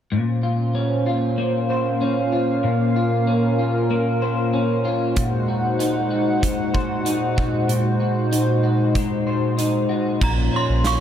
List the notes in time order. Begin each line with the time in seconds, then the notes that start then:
0.12 A#2 A#3 C#4 F4 C5 F5
0.43 F4
0.75 C#4
1.06 F4
1.38 A#3
1.70 C5
2.01 C#4
2.32 F4
2.64 A#2 A#4
2.96 F4
3.27 C#4
3.59 F4
3.91 A#3
4.22 C5
4.53 C#4
4.85 F4
5.16 A#2 G#3 D#4 F#4 C5 F#5, kick, closed hi-hat
5.48 F#4
5.79 D#4, closed hi-hat
6.11 F#4
6.43 G#3, kick, closed hi-hat
6.74 C5, kick
7.05 D#4, closed hi-hat
7.37 F#4, kick
7.68 A#2, closed hi-hat
8.00 F#4
8.32 D#4, closed hi-hat
8.64 F#4
8.95 G#3, kick, closed hi-hat
9.27 C5
9.58 D#4, closed hi-hat
9.89 F#4
10.21 A#1 A#2 F3 A#3 C#4 F4 A#5, kick, crash
10.53 C#4 C6
10.69 A#1
10.84 F4 C#6, snare, closed hi-hat